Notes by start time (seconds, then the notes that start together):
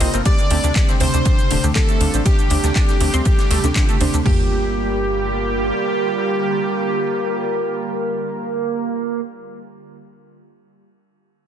Already playing: C3 G3 A#3 D#4 A4 D#5
0.00 C2 A#3 C4 D#4 F4, open hi-hat, ride
0.13 G1 A#3 C4 D#4 A#4, closed hi-hat, ride, cabasa
0.25 A3 C4 D4 G4 D5, kick, closed hi-hat, ride, cabasa
0.39 D3, closed hi-hat, cabasa
0.50 D2 D3 A3 C4 D4 G4, open hi-hat, ride
0.64 D2 A3 C4 D4 G4, closed hi-hat, cabasa
0.75 D3 A3 C4 D4 G4, kick, snare, clap, closed hi-hat, ride, cabasa
0.89 C4, snare, closed hi-hat, cabasa
1.00 D2 D3 A3 C4 D4 G4 C5, open hi-hat, ride
1.14 D2 D3 A3 C4 D4 G4, closed hi-hat, cabasa
1.25 D3 A3 C4 D4 G4, kick, closed hi-hat, ride, cabasa
1.39 closed hi-hat, cabasa
1.51 D1 D3 A3 C4 D4 G4, open hi-hat, ride
1.64 D2 D3 A3 C4 D4 G4, closed hi-hat, cabasa
1.75 D3 A3 C4 D4 G4 A4, kick, snare, clap, closed hi-hat, ride, cabasa
1.88 A3, closed hi-hat, ride, cabasa
2.00 D2 D3 A3 C4 D4 F4, open hi-hat, ride
2.14 A1 D3 A3 C4 D4 C5, closed hi-hat, cabasa
2.25 A3 C4 D4 G4, kick, closed hi-hat, ride, cabasa
2.39 D3, closed hi-hat, cabasa
2.50 D2 D3 A3 C4 D4 G4, open hi-hat, ride
2.64 D2 D3 A3 C4 D4 G4, snare, closed hi-hat, cabasa
2.76 A3 C4 D4 G4, kick, snare, clap, closed hi-hat, ride, cabasa
2.88 D3, snare, closed hi-hat, cabasa
3.00 D2 D3 A3 C4 D4 G4, open hi-hat, ride
3.14 D2 A3 C4 D4 G4, closed hi-hat, cabasa
3.25 D3 A3 C4 D4 G4, kick, closed hi-hat, ride, cabasa
3.39 D3, snare, closed hi-hat, cabasa
3.51 D2 A3, snare, open hi-hat, ride
3.64 D2 D3 A3 C4 D4 A4, snare, closed hi-hat, cabasa
3.75 D3 A3 C4 D4 F4, kick, snare, clap, closed hi-hat, ride, cabasa
3.89 A3, closed hi-hat, cabasa
4.00 D2 D3 A3 C4 D4 C5, open hi-hat, ride
4.13 D2 D3 A3 C4 D4 A4, closed hi-hat, ride, cabasa
4.26 G1 D3 G3 A#3 D4 F4 G4, kick, floor tom, crash